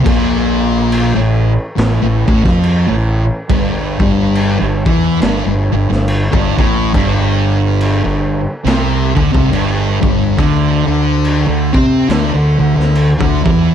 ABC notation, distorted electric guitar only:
X:1
M:4/4
L:1/16
Q:"Swing" 1/4=70
K:G
V:1 name="Distorted electric guitar" clef=bass
_B,,4- B,, A,,2 z A,, A,, A,, =F,2 A,,2 z | G,,2 G,,3 G,, E,2 G,, G,, G,, G,,2 G,, A,,2 | G,,4- G,, G,,2 z C,2 D, C, G,,2 G,,2 | D,2 D,3 D, C2 D, D, D, D,2 D, E,2 |]